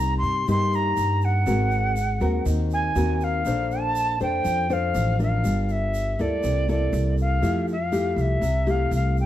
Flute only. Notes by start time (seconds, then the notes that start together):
Already playing: A#5
0.17 C6
0.50 C6
0.75 A#5
1.24 F#5
2.73 G#5
3.23 F5
3.81 A5
4.22 G5
4.73 F5
5.22 F5
5.71 E5
6.21 D5
6.70 D5
7.21 F5
7.72 F5
8.21 E5
8.70 F5
8.95 F5
9.20 G5